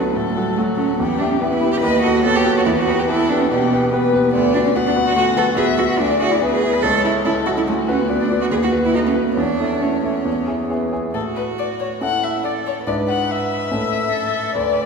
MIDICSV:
0, 0, Header, 1, 4, 480
1, 0, Start_track
1, 0, Tempo, 417827
1, 1142, Time_signature, 4, 2, 24, 8
1, 9780, Tempo, 436681
1, 14100, Tempo, 421053
1, 16850, End_track
2, 0, Start_track
2, 0, Title_t, "Violin"
2, 0, Program_c, 0, 40
2, 0, Note_on_c, 0, 71, 49
2, 188, Note_on_c, 0, 69, 56
2, 205, Note_off_c, 0, 71, 0
2, 657, Note_on_c, 0, 66, 51
2, 674, Note_off_c, 0, 69, 0
2, 1134, Note_off_c, 0, 66, 0
2, 1141, Note_on_c, 0, 67, 58
2, 1620, Note_on_c, 0, 71, 59
2, 1638, Note_off_c, 0, 67, 0
2, 2090, Note_off_c, 0, 71, 0
2, 2097, Note_on_c, 0, 75, 68
2, 2559, Note_off_c, 0, 75, 0
2, 2566, Note_on_c, 0, 73, 58
2, 3051, Note_on_c, 0, 71, 68
2, 3068, Note_off_c, 0, 73, 0
2, 3529, Note_on_c, 0, 69, 61
2, 3547, Note_off_c, 0, 71, 0
2, 4014, Note_off_c, 0, 69, 0
2, 4021, Note_on_c, 0, 67, 65
2, 4491, Note_off_c, 0, 67, 0
2, 4501, Note_on_c, 0, 71, 63
2, 4972, Note_off_c, 0, 71, 0
2, 4986, Note_on_c, 0, 74, 68
2, 5464, Note_on_c, 0, 78, 79
2, 5481, Note_off_c, 0, 74, 0
2, 6393, Note_off_c, 0, 78, 0
2, 6400, Note_on_c, 0, 76, 68
2, 6875, Note_off_c, 0, 76, 0
2, 6879, Note_on_c, 0, 74, 66
2, 7359, Note_on_c, 0, 71, 68
2, 7376, Note_off_c, 0, 74, 0
2, 7841, Note_on_c, 0, 73, 67
2, 7859, Note_off_c, 0, 71, 0
2, 8314, Note_off_c, 0, 73, 0
2, 8321, Note_on_c, 0, 69, 59
2, 8795, Note_off_c, 0, 69, 0
2, 8802, Note_on_c, 0, 66, 56
2, 9286, Note_on_c, 0, 74, 61
2, 9303, Note_off_c, 0, 66, 0
2, 9774, Note_off_c, 0, 74, 0
2, 9781, Note_on_c, 0, 71, 61
2, 10710, Note_off_c, 0, 71, 0
2, 10729, Note_on_c, 0, 73, 50
2, 12396, Note_off_c, 0, 73, 0
2, 12670, Note_on_c, 0, 69, 52
2, 12758, Note_off_c, 0, 69, 0
2, 12913, Note_on_c, 0, 71, 50
2, 13001, Note_off_c, 0, 71, 0
2, 13156, Note_on_c, 0, 74, 56
2, 13244, Note_off_c, 0, 74, 0
2, 13389, Note_on_c, 0, 73, 50
2, 13477, Note_off_c, 0, 73, 0
2, 13639, Note_on_c, 0, 78, 69
2, 13874, Note_on_c, 0, 76, 54
2, 13891, Note_off_c, 0, 78, 0
2, 14092, Note_off_c, 0, 76, 0
2, 14099, Note_on_c, 0, 74, 55
2, 14190, Note_off_c, 0, 74, 0
2, 14352, Note_on_c, 0, 73, 56
2, 14443, Note_off_c, 0, 73, 0
2, 14584, Note_on_c, 0, 74, 61
2, 14675, Note_off_c, 0, 74, 0
2, 14832, Note_on_c, 0, 78, 58
2, 15085, Note_on_c, 0, 76, 66
2, 15102, Note_off_c, 0, 78, 0
2, 16493, Note_off_c, 0, 76, 0
2, 16500, Note_on_c, 0, 74, 68
2, 16850, Note_off_c, 0, 74, 0
2, 16850, End_track
3, 0, Start_track
3, 0, Title_t, "Grand piano"
3, 0, Program_c, 1, 0
3, 0, Control_c, 1, 64, 127
3, 0, Note_on_c, 1, 38, 49
3, 0, Note_on_c, 1, 54, 38
3, 0, Note_on_c, 1, 66, 34
3, 0, Note_on_c, 1, 69, 38
3, 159, Note_off_c, 1, 66, 0
3, 162, Note_off_c, 1, 69, 0
3, 186, Note_on_c, 1, 45, 46
3, 417, Note_off_c, 1, 45, 0
3, 427, Note_on_c, 1, 66, 40
3, 435, Note_on_c, 1, 69, 42
3, 641, Note_off_c, 1, 66, 0
3, 646, Note_off_c, 1, 69, 0
3, 665, Note_off_c, 1, 54, 0
3, 665, Note_on_c, 1, 54, 42
3, 670, Note_on_c, 1, 66, 38
3, 671, Note_on_c, 1, 69, 43
3, 880, Note_off_c, 1, 54, 0
3, 883, Note_off_c, 1, 66, 0
3, 883, Note_off_c, 1, 69, 0
3, 900, Note_on_c, 1, 66, 39
3, 904, Note_on_c, 1, 69, 42
3, 1117, Note_off_c, 1, 66, 0
3, 1119, Note_off_c, 1, 69, 0
3, 1145, Note_on_c, 1, 40, 48
3, 1164, Control_c, 1, 64, 0
3, 1173, Note_off_c, 1, 38, 0
3, 1353, Control_c, 1, 64, 127
3, 1373, Note_on_c, 1, 64, 41
3, 1375, Note_off_c, 1, 40, 0
3, 1379, Note_on_c, 1, 67, 44
3, 1591, Note_off_c, 1, 64, 0
3, 1595, Note_off_c, 1, 67, 0
3, 1621, Note_on_c, 1, 59, 40
3, 1628, Note_on_c, 1, 64, 41
3, 1628, Note_on_c, 1, 67, 45
3, 1833, Note_off_c, 1, 64, 0
3, 1836, Note_off_c, 1, 59, 0
3, 1836, Note_off_c, 1, 67, 0
3, 1850, Note_on_c, 1, 64, 42
3, 1854, Note_on_c, 1, 67, 43
3, 2071, Note_off_c, 1, 64, 0
3, 2073, Note_off_c, 1, 67, 0
3, 2103, Note_on_c, 1, 39, 58
3, 2122, Control_c, 1, 64, 0
3, 2314, Control_c, 1, 64, 127
3, 2335, Note_off_c, 1, 39, 0
3, 2335, Note_on_c, 1, 66, 40
3, 2338, Note_on_c, 1, 69, 48
3, 2553, Note_off_c, 1, 66, 0
3, 2555, Note_off_c, 1, 69, 0
3, 2575, Note_on_c, 1, 59, 44
3, 2581, Note_on_c, 1, 66, 43
3, 2587, Note_on_c, 1, 69, 48
3, 2795, Note_off_c, 1, 59, 0
3, 2798, Note_off_c, 1, 66, 0
3, 2801, Note_off_c, 1, 69, 0
3, 2822, Note_on_c, 1, 66, 47
3, 2825, Note_on_c, 1, 69, 49
3, 3041, Note_off_c, 1, 66, 0
3, 3042, Note_off_c, 1, 69, 0
3, 3060, Note_on_c, 1, 40, 57
3, 3086, Control_c, 1, 64, 0
3, 3269, Control_c, 1, 64, 127
3, 3296, Note_off_c, 1, 40, 0
3, 3312, Note_on_c, 1, 67, 43
3, 3317, Note_on_c, 1, 71, 47
3, 3524, Note_off_c, 1, 67, 0
3, 3527, Note_off_c, 1, 71, 0
3, 3554, Note_on_c, 1, 59, 44
3, 3560, Note_on_c, 1, 67, 42
3, 3565, Note_on_c, 1, 71, 49
3, 3767, Note_off_c, 1, 59, 0
3, 3770, Note_off_c, 1, 67, 0
3, 3773, Note_off_c, 1, 71, 0
3, 3796, Note_on_c, 1, 67, 41
3, 3806, Note_on_c, 1, 71, 49
3, 4009, Note_off_c, 1, 67, 0
3, 4014, Note_off_c, 1, 71, 0
3, 4037, Note_on_c, 1, 47, 52
3, 4264, Note_off_c, 1, 47, 0
3, 4279, Note_on_c, 1, 67, 44
3, 4284, Note_on_c, 1, 71, 47
3, 4487, Note_off_c, 1, 67, 0
3, 4490, Note_off_c, 1, 71, 0
3, 4510, Note_on_c, 1, 59, 48
3, 4515, Note_on_c, 1, 67, 46
3, 4519, Note_on_c, 1, 71, 51
3, 4722, Note_off_c, 1, 59, 0
3, 4725, Note_off_c, 1, 67, 0
3, 4728, Note_off_c, 1, 71, 0
3, 4748, Note_on_c, 1, 67, 47
3, 4757, Note_on_c, 1, 71, 52
3, 4961, Note_off_c, 1, 67, 0
3, 4966, Note_off_c, 1, 71, 0
3, 4994, Note_on_c, 1, 38, 56
3, 5005, Control_c, 1, 64, 0
3, 5154, Control_c, 1, 64, 127
3, 5220, Note_off_c, 1, 38, 0
3, 5224, Note_on_c, 1, 66, 45
3, 5227, Note_on_c, 1, 71, 46
3, 5438, Note_off_c, 1, 66, 0
3, 5439, Note_off_c, 1, 71, 0
3, 5464, Note_on_c, 1, 59, 47
3, 5469, Note_on_c, 1, 66, 45
3, 5473, Note_on_c, 1, 71, 49
3, 5676, Note_off_c, 1, 59, 0
3, 5678, Note_off_c, 1, 66, 0
3, 5680, Note_off_c, 1, 71, 0
3, 5699, Note_on_c, 1, 66, 45
3, 5701, Note_on_c, 1, 71, 47
3, 5910, Note_off_c, 1, 66, 0
3, 5911, Note_off_c, 1, 71, 0
3, 5926, Note_on_c, 1, 38, 54
3, 6158, Note_off_c, 1, 38, 0
3, 6161, Note_on_c, 1, 66, 46
3, 6167, Note_on_c, 1, 71, 49
3, 6378, Note_off_c, 1, 66, 0
3, 6382, Note_off_c, 1, 71, 0
3, 6400, Note_on_c, 1, 59, 48
3, 6404, Note_on_c, 1, 66, 46
3, 6407, Note_on_c, 1, 71, 53
3, 6619, Note_off_c, 1, 59, 0
3, 6621, Note_off_c, 1, 66, 0
3, 6623, Note_off_c, 1, 71, 0
3, 6641, Note_on_c, 1, 66, 47
3, 6649, Note_on_c, 1, 71, 52
3, 6861, Note_off_c, 1, 66, 0
3, 6865, Note_off_c, 1, 71, 0
3, 6890, Note_on_c, 1, 38, 53
3, 6909, Control_c, 1, 64, 0
3, 7096, Control_c, 1, 64, 127
3, 7120, Note_off_c, 1, 38, 0
3, 7128, Note_on_c, 1, 64, 44
3, 7135, Note_on_c, 1, 68, 47
3, 7341, Note_off_c, 1, 64, 0
3, 7345, Note_off_c, 1, 68, 0
3, 7371, Note_on_c, 1, 59, 45
3, 7373, Note_on_c, 1, 64, 46
3, 7377, Note_on_c, 1, 68, 48
3, 7583, Note_off_c, 1, 59, 0
3, 7584, Note_off_c, 1, 64, 0
3, 7586, Note_off_c, 1, 68, 0
3, 7607, Note_on_c, 1, 64, 42
3, 7617, Note_on_c, 1, 68, 43
3, 7822, Note_off_c, 1, 64, 0
3, 7828, Note_off_c, 1, 68, 0
3, 7856, Note_on_c, 1, 37, 57
3, 7867, Control_c, 1, 64, 0
3, 8058, Control_c, 1, 64, 127
3, 8085, Note_off_c, 1, 37, 0
3, 8089, Note_on_c, 1, 64, 42
3, 8094, Note_on_c, 1, 69, 44
3, 8306, Note_off_c, 1, 64, 0
3, 8309, Note_off_c, 1, 69, 0
3, 8333, Note_on_c, 1, 61, 45
3, 8334, Note_on_c, 1, 64, 44
3, 8342, Note_on_c, 1, 69, 45
3, 8549, Note_off_c, 1, 61, 0
3, 8549, Note_off_c, 1, 64, 0
3, 8554, Note_off_c, 1, 69, 0
3, 8572, Note_on_c, 1, 64, 45
3, 8578, Note_on_c, 1, 69, 47
3, 8789, Note_off_c, 1, 64, 0
3, 8792, Note_off_c, 1, 69, 0
3, 8821, Note_on_c, 1, 38, 53
3, 8835, Control_c, 1, 64, 0
3, 9007, Control_c, 1, 64, 127
3, 9052, Note_off_c, 1, 38, 0
3, 9055, Note_on_c, 1, 66, 41
3, 9058, Note_on_c, 1, 71, 44
3, 9274, Note_off_c, 1, 66, 0
3, 9275, Note_off_c, 1, 71, 0
3, 9300, Note_on_c, 1, 59, 40
3, 9304, Note_on_c, 1, 66, 39
3, 9309, Note_on_c, 1, 71, 44
3, 9517, Note_off_c, 1, 59, 0
3, 9519, Note_off_c, 1, 66, 0
3, 9522, Note_off_c, 1, 71, 0
3, 9546, Note_on_c, 1, 66, 37
3, 9550, Note_on_c, 1, 71, 43
3, 9759, Note_off_c, 1, 66, 0
3, 9762, Note_off_c, 1, 71, 0
3, 9781, Note_on_c, 1, 39, 50
3, 9800, Control_c, 1, 64, 0
3, 9982, Control_c, 1, 64, 127
3, 10005, Note_off_c, 1, 39, 0
3, 10006, Note_on_c, 1, 66, 34
3, 10008, Note_on_c, 1, 71, 40
3, 10221, Note_off_c, 1, 66, 0
3, 10221, Note_off_c, 1, 71, 0
3, 10246, Note_on_c, 1, 57, 39
3, 10249, Note_on_c, 1, 66, 39
3, 10255, Note_on_c, 1, 71, 41
3, 10462, Note_off_c, 1, 57, 0
3, 10463, Note_off_c, 1, 66, 0
3, 10467, Note_off_c, 1, 71, 0
3, 10483, Note_on_c, 1, 66, 36
3, 10484, Note_on_c, 1, 71, 39
3, 10702, Note_off_c, 1, 66, 0
3, 10703, Note_off_c, 1, 71, 0
3, 10721, Note_on_c, 1, 40, 45
3, 10751, Control_c, 1, 64, 0
3, 10962, Note_off_c, 1, 40, 0
3, 10963, Control_c, 1, 64, 127
3, 10970, Note_on_c, 1, 64, 34
3, 10974, Note_on_c, 1, 69, 37
3, 11191, Note_off_c, 1, 64, 0
3, 11193, Note_off_c, 1, 69, 0
3, 11212, Note_on_c, 1, 57, 35
3, 11215, Note_on_c, 1, 64, 36
3, 11222, Note_on_c, 1, 69, 37
3, 11432, Note_off_c, 1, 57, 0
3, 11434, Note_off_c, 1, 64, 0
3, 11438, Note_off_c, 1, 69, 0
3, 11451, Note_on_c, 1, 64, 33
3, 11456, Note_on_c, 1, 69, 36
3, 11672, Note_off_c, 1, 64, 0
3, 11675, Note_off_c, 1, 69, 0
3, 11690, Note_on_c, 1, 40, 46
3, 11723, Control_c, 1, 64, 0
3, 11883, Control_c, 1, 64, 127
3, 11930, Note_off_c, 1, 40, 0
3, 11934, Note_on_c, 1, 64, 35
3, 11936, Note_on_c, 1, 68, 36
3, 12156, Note_off_c, 1, 64, 0
3, 12158, Note_off_c, 1, 68, 0
3, 12182, Note_on_c, 1, 59, 34
3, 12187, Note_on_c, 1, 64, 36
3, 12191, Note_on_c, 1, 68, 40
3, 12404, Note_off_c, 1, 59, 0
3, 12406, Note_off_c, 1, 64, 0
3, 12408, Note_off_c, 1, 68, 0
3, 12430, Note_on_c, 1, 64, 36
3, 12434, Note_on_c, 1, 68, 39
3, 12649, Note_off_c, 1, 64, 0
3, 12651, Note_off_c, 1, 68, 0
3, 12666, Note_on_c, 1, 45, 37
3, 12695, Control_c, 1, 64, 0
3, 12866, Control_c, 1, 64, 127
3, 13625, Note_on_c, 1, 61, 33
3, 13631, Note_on_c, 1, 64, 34
3, 13636, Note_on_c, 1, 69, 36
3, 14538, Note_off_c, 1, 45, 0
3, 14543, Note_off_c, 1, 61, 0
3, 14546, Note_off_c, 1, 64, 0
3, 14548, Note_off_c, 1, 69, 0
3, 14587, Note_on_c, 1, 44, 42
3, 14590, Note_on_c, 1, 62, 31
3, 14590, Note_on_c, 1, 64, 31
3, 14603, Note_on_c, 1, 71, 32
3, 14612, Control_c, 1, 64, 0
3, 14797, Control_c, 1, 64, 127
3, 15511, Note_off_c, 1, 62, 0
3, 15511, Note_off_c, 1, 64, 0
3, 15518, Note_off_c, 1, 71, 0
3, 15526, Note_off_c, 1, 44, 0
3, 15548, Note_on_c, 1, 45, 47
3, 15549, Note_on_c, 1, 61, 33
3, 15553, Note_on_c, 1, 64, 34
3, 15563, Note_on_c, 1, 69, 33
3, 15578, Control_c, 1, 64, 0
3, 15747, Control_c, 1, 64, 127
3, 16456, Note_off_c, 1, 61, 0
3, 16458, Note_off_c, 1, 64, 0
3, 16463, Note_off_c, 1, 69, 0
3, 16472, Note_off_c, 1, 45, 0
3, 16503, Note_on_c, 1, 38, 42
3, 16524, Control_c, 1, 64, 0
3, 16673, Control_c, 1, 64, 127
3, 16850, Note_off_c, 1, 38, 0
3, 16850, End_track
4, 0, Start_track
4, 0, Title_t, "Cello"
4, 0, Program_c, 2, 42
4, 43, Note_on_c, 2, 59, 58
4, 150, Note_on_c, 2, 57, 65
4, 167, Note_off_c, 2, 59, 0
4, 381, Note_off_c, 2, 57, 0
4, 388, Note_on_c, 2, 55, 61
4, 617, Note_off_c, 2, 55, 0
4, 624, Note_on_c, 2, 57, 71
4, 716, Note_off_c, 2, 57, 0
4, 875, Note_on_c, 2, 61, 65
4, 1119, Note_off_c, 2, 61, 0
4, 1125, Note_on_c, 2, 59, 77
4, 1357, Note_on_c, 2, 62, 68
4, 1374, Note_off_c, 2, 59, 0
4, 1491, Note_on_c, 2, 61, 54
4, 1508, Note_off_c, 2, 62, 0
4, 1605, Note_on_c, 2, 59, 71
4, 1623, Note_off_c, 2, 61, 0
4, 1752, Note_on_c, 2, 64, 68
4, 1769, Note_off_c, 2, 59, 0
4, 1973, Note_off_c, 2, 64, 0
4, 1980, Note_on_c, 2, 67, 73
4, 2028, Note_off_c, 2, 67, 0
4, 2078, Note_on_c, 2, 71, 84
4, 2314, Note_off_c, 2, 71, 0
4, 2321, Note_on_c, 2, 66, 76
4, 2566, Note_off_c, 2, 66, 0
4, 2576, Note_on_c, 2, 69, 87
4, 2709, Note_on_c, 2, 67, 75
4, 2726, Note_off_c, 2, 69, 0
4, 2947, Note_off_c, 2, 67, 0
4, 2958, Note_on_c, 2, 66, 69
4, 3004, Note_off_c, 2, 66, 0
4, 3050, Note_on_c, 2, 64, 88
4, 3101, Note_off_c, 2, 64, 0
4, 3195, Note_on_c, 2, 66, 74
4, 3435, Note_on_c, 2, 67, 71
4, 3453, Note_off_c, 2, 66, 0
4, 3532, Note_off_c, 2, 67, 0
4, 3539, Note_on_c, 2, 64, 87
4, 3780, Note_on_c, 2, 62, 77
4, 3798, Note_off_c, 2, 64, 0
4, 3911, Note_on_c, 2, 61, 79
4, 3928, Note_off_c, 2, 62, 0
4, 4012, Note_off_c, 2, 61, 0
4, 4019, Note_on_c, 2, 59, 74
4, 4724, Note_off_c, 2, 59, 0
4, 4957, Note_on_c, 2, 59, 90
4, 5217, Note_on_c, 2, 62, 80
4, 5235, Note_off_c, 2, 59, 0
4, 5339, Note_off_c, 2, 62, 0
4, 5349, Note_on_c, 2, 61, 73
4, 5395, Note_off_c, 2, 61, 0
4, 5465, Note_on_c, 2, 59, 75
4, 5511, Note_off_c, 2, 59, 0
4, 5592, Note_on_c, 2, 62, 70
4, 5684, Note_off_c, 2, 62, 0
4, 5816, Note_on_c, 2, 66, 81
4, 5926, Note_off_c, 2, 66, 0
4, 5933, Note_on_c, 2, 66, 87
4, 6025, Note_off_c, 2, 66, 0
4, 6170, Note_on_c, 2, 69, 80
4, 6262, Note_off_c, 2, 69, 0
4, 6399, Note_on_c, 2, 68, 80
4, 6490, Note_off_c, 2, 68, 0
4, 6638, Note_on_c, 2, 66, 77
4, 6688, Note_off_c, 2, 66, 0
4, 6766, Note_on_c, 2, 66, 73
4, 6881, Note_on_c, 2, 62, 86
4, 6898, Note_off_c, 2, 66, 0
4, 7114, Note_off_c, 2, 62, 0
4, 7121, Note_on_c, 2, 66, 79
4, 7258, Note_on_c, 2, 64, 59
4, 7275, Note_off_c, 2, 66, 0
4, 7357, Note_on_c, 2, 62, 74
4, 7374, Note_off_c, 2, 64, 0
4, 7479, Note_off_c, 2, 62, 0
4, 7494, Note_on_c, 2, 68, 76
4, 7735, Note_on_c, 2, 71, 79
4, 7752, Note_off_c, 2, 68, 0
4, 7841, Note_on_c, 2, 69, 85
4, 7858, Note_off_c, 2, 71, 0
4, 8085, Note_off_c, 2, 69, 0
4, 8091, Note_on_c, 2, 64, 73
4, 8183, Note_off_c, 2, 64, 0
4, 8332, Note_on_c, 2, 64, 77
4, 8424, Note_off_c, 2, 64, 0
4, 8572, Note_on_c, 2, 66, 71
4, 8620, Note_off_c, 2, 66, 0
4, 8702, Note_on_c, 2, 64, 70
4, 8748, Note_off_c, 2, 64, 0
4, 8817, Note_on_c, 2, 57, 75
4, 8909, Note_off_c, 2, 57, 0
4, 9067, Note_on_c, 2, 61, 70
4, 9191, Note_on_c, 2, 59, 52
4, 9208, Note_off_c, 2, 61, 0
4, 9301, Note_on_c, 2, 57, 66
4, 9318, Note_off_c, 2, 59, 0
4, 9425, Note_on_c, 2, 62, 63
4, 9442, Note_off_c, 2, 57, 0
4, 9657, Note_off_c, 2, 62, 0
4, 9664, Note_on_c, 2, 66, 68
4, 9711, Note_off_c, 2, 66, 0
4, 9783, Note_on_c, 2, 68, 74
4, 9829, Note_off_c, 2, 68, 0
4, 9911, Note_on_c, 2, 66, 64
4, 9999, Note_off_c, 2, 66, 0
4, 10146, Note_on_c, 2, 64, 65
4, 10254, Note_off_c, 2, 64, 0
4, 10260, Note_on_c, 2, 63, 73
4, 10305, Note_off_c, 2, 63, 0
4, 10391, Note_on_c, 2, 61, 55
4, 10479, Note_off_c, 2, 61, 0
4, 10623, Note_on_c, 2, 59, 57
4, 10731, Note_on_c, 2, 62, 69
4, 10747, Note_off_c, 2, 59, 0
4, 11213, Note_on_c, 2, 61, 55
4, 11229, Note_off_c, 2, 62, 0
4, 12184, Note_off_c, 2, 61, 0
4, 12682, Note_on_c, 2, 66, 49
4, 13613, Note_on_c, 2, 64, 42
4, 13629, Note_off_c, 2, 66, 0
4, 14094, Note_on_c, 2, 69, 53
4, 14111, Note_off_c, 2, 64, 0
4, 14572, Note_off_c, 2, 69, 0
4, 14579, Note_on_c, 2, 71, 56
4, 15997, Note_off_c, 2, 71, 0
4, 16020, Note_on_c, 2, 69, 55
4, 16492, Note_on_c, 2, 71, 53
4, 16509, Note_off_c, 2, 69, 0
4, 16850, Note_off_c, 2, 71, 0
4, 16850, End_track
0, 0, End_of_file